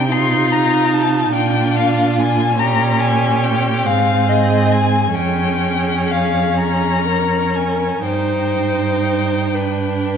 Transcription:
0.00 1.33 C3 soft
0.00 0.13 G5 medium
0.10 1.34 D#4 medium
0.10 1.31 F4 medium
0.10 0.53 C6 medium
0.52 0.96 A#5 medium
0.94 1.33 A5 medium
1.32 3.87 A#2 medium
1.32 2.56 D4 medium
1.32 2.56 F4 medium
1.32 1.78 G5 medium
1.76 2.17 F5 medium
2.19 2.60 G#5 medium
2.57 3.86 C#4 medium
2.57 3.88 G4 medium
2.57 3.02 A#5 medium
3.00 3.45 G#5 medium
3.44 3.88 G5 medium
3.84 5.14 G#2 medium
3.84 5.13 C4 medium
3.84 5.14 G#4 medium
3.84 4.30 F5 medium
4.29 4.72 D#5 medium
4.70 5.16 G#5 medium
5.14 8.02 F2 medium
5.14 8.02 C#4 medium
5.14 7.05 G#4 medium
5.14 6.13 G5 medium
6.11 6.59 F5 medium
6.59 7.57 A#5 medium
7.08 8.04 A#4 soft
7.56 8.05 G#5 medium
8.05 10.17 G2 soft
8.05 9.55 D#4 medium
8.05 9.56 C5 soft
8.05 10.17 G5 medium
9.54 10.17 D4 soft
9.54 10.17 B4 soft

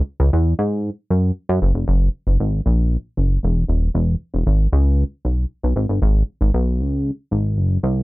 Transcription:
0.20 0.30 C#2 loud
0.33 0.54 E2 medium
0.59 0.90 G#2 medium
1.10 1.31 F#2 medium
1.49 1.60 F#2 loud
1.62 1.73 F#1 loud
1.74 1.85 F1 medium
1.88 2.09 F#1 loud
2.27 2.37 F#1 medium
2.40 2.61 G#1 medium
2.66 2.97 A#1 medium
3.17 3.38 F#1 medium
3.43 3.64 E1 loud
3.68 3.90 D#1 medium
3.94 4.16 E1 loud
4.34 4.44 E1 medium
4.47 4.68 G#1 medium
4.73 5.04 C#2 loud
5.25 5.46 B1 medium
5.63 5.74 B1 medium
5.76 5.86 G#1 loud
5.89 6.00 G1 medium
6.02 6.23 G#1 loud
6.41 6.51 G#1 medium
6.54 6.81 B1 medium
6.80 7.11 C#2 medium
7.31 7.59 G#1 medium
7.57 7.78 F#1 loud
7.83 8.03 C2 medium

